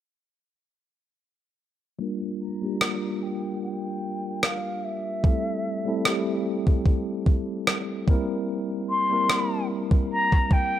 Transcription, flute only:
0, 0, Header, 1, 2, 480
1, 0, Start_track
1, 0, Tempo, 810811
1, 1182, Time_signature, 4, 2, 24, 8
1, 6391, End_track
2, 0, Start_track
2, 0, Title_t, "Flute"
2, 0, Program_c, 0, 73
2, 1431, Note_on_c, 0, 82, 108
2, 1910, Note_on_c, 0, 79, 91
2, 1919, Note_off_c, 0, 82, 0
2, 2144, Note_off_c, 0, 79, 0
2, 2147, Note_on_c, 0, 79, 95
2, 2627, Note_on_c, 0, 77, 80
2, 2636, Note_off_c, 0, 79, 0
2, 2868, Note_on_c, 0, 76, 84
2, 2877, Note_off_c, 0, 77, 0
2, 3825, Note_off_c, 0, 76, 0
2, 5269, Note_on_c, 0, 84, 105
2, 5722, Note_off_c, 0, 84, 0
2, 5994, Note_on_c, 0, 82, 102
2, 6233, Note_on_c, 0, 79, 91
2, 6241, Note_off_c, 0, 82, 0
2, 6391, Note_off_c, 0, 79, 0
2, 6391, End_track
0, 0, End_of_file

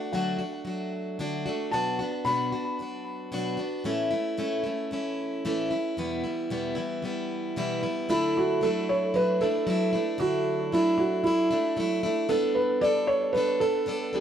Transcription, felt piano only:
0, 0, Header, 1, 2, 480
1, 0, Start_track
1, 0, Key_signature, 2, "major"
1, 0, Tempo, 528634
1, 1570, Time_signature, 4, 2, 24, 8
1, 12895, End_track
2, 0, Start_track
2, 0, Title_t, "Felt piano"
2, 0, Program_c, 0, 0
2, 114, Note_on_c, 0, 78, 66
2, 1528, Note_off_c, 0, 78, 0
2, 1556, Note_on_c, 0, 81, 83
2, 2041, Note_on_c, 0, 83, 79
2, 2060, Note_off_c, 0, 81, 0
2, 3215, Note_off_c, 0, 83, 0
2, 7350, Note_on_c, 0, 64, 92
2, 7594, Note_off_c, 0, 64, 0
2, 7601, Note_on_c, 0, 66, 90
2, 7834, Note_on_c, 0, 69, 97
2, 7839, Note_off_c, 0, 66, 0
2, 8074, Note_on_c, 0, 73, 95
2, 8076, Note_off_c, 0, 69, 0
2, 8292, Note_off_c, 0, 73, 0
2, 8313, Note_on_c, 0, 71, 104
2, 8548, Note_on_c, 0, 69, 100
2, 8554, Note_off_c, 0, 71, 0
2, 9258, Note_on_c, 0, 66, 96
2, 9284, Note_off_c, 0, 69, 0
2, 9742, Note_on_c, 0, 64, 81
2, 9751, Note_off_c, 0, 66, 0
2, 9966, Note_on_c, 0, 66, 80
2, 9986, Note_off_c, 0, 64, 0
2, 10200, Note_on_c, 0, 64, 85
2, 10218, Note_off_c, 0, 66, 0
2, 10889, Note_off_c, 0, 64, 0
2, 11160, Note_on_c, 0, 69, 99
2, 11393, Note_on_c, 0, 71, 92
2, 11413, Note_off_c, 0, 69, 0
2, 11634, Note_on_c, 0, 74, 101
2, 11649, Note_off_c, 0, 71, 0
2, 11870, Note_on_c, 0, 73, 100
2, 11889, Note_off_c, 0, 74, 0
2, 12100, Note_on_c, 0, 71, 100
2, 12127, Note_off_c, 0, 73, 0
2, 12350, Note_on_c, 0, 69, 92
2, 12362, Note_off_c, 0, 71, 0
2, 12846, Note_on_c, 0, 67, 87
2, 12852, Note_off_c, 0, 69, 0
2, 12895, Note_off_c, 0, 67, 0
2, 12895, End_track
0, 0, End_of_file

